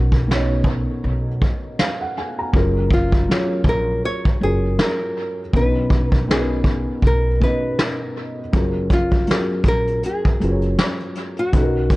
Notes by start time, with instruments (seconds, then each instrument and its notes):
Already playing: upright bass B1, felt piano B2 B3 C#4 D#4 A#4
0.12 kick
0.28 felt piano B2 B3 C#4 D#4 C#5, snare
0.64 kick
1.04 upright bass B1
1.42 kick
1.79 felt piano F5, snare
2.01 felt piano F#5
2.18 felt piano G#5
2.39 felt piano A#5
2.53 upright bass F#1, felt piano F#3 C#4 F4 G#4 A#4, kick
2.90 nylon-string guitar F4, kick
3.12 kick
3.28 felt piano F#3 C#4 F4 G#4 C#5, snare
3.64 upright bass A#1, kick
3.69 nylon-string guitar A#4
4.05 nylon-string guitar C#5
4.25 kick
4.40 upright bass F#1, felt piano F#3 C#4 F4 G#4, nylon-string guitar G#4
4.44 felt piano A#4
4.79 nylon-string guitar A#4, snare
5.53 upright bass B1, felt piano B2 B3 C#4 D4 B4, nylon-string guitar B4, kick
5.62 felt piano D#4
5.90 kick
6.09 nylon-string guitar A#4, kick
6.28 felt piano B2 B3 C#4 D#4 A#4, nylon-string guitar G#4, snare
6.38 felt piano B4
6.64 kick
7.02 upright bass B1, kick
7.07 nylon-string guitar A#4
7.40 felt piano B2 B3 C#4 D#4, nylon-string guitar B4, kick
7.44 felt piano D#5
7.79 nylon-string guitar A#4, snare
8.53 upright bass F#1, felt piano F#3 C#4 F4 G#4, kick, closed hi-hat
8.57 felt piano A#4
8.90 nylon-string guitar F4, kick, closed hi-hat
9.11 kick, closed hi-hat
9.27 felt piano F#3 C#4 F4 G#4, snare, closed hi-hat
9.32 felt piano A#4
9.64 upright bass A#1, kick, closed hi-hat
9.68 nylon-string guitar A#4
9.87 closed hi-hat
10.03 nylon-string guitar G#4, closed hi-hat
10.25 kick
10.40 upright bass F#1, felt piano F#3 C#4 F4 G#4 B4, closed hi-hat
10.50 felt piano C#5
10.62 closed hi-hat
10.78 snare, closed hi-hat
11.00 closed hi-hat
11.15 closed hi-hat
11.37 nylon-string guitar F#4, closed hi-hat
11.52 upright bass B1, felt piano B2 B3 C#4 D#4 A4, kick, closed hi-hat
11.63 felt piano A#4
11.90 kick, closed hi-hat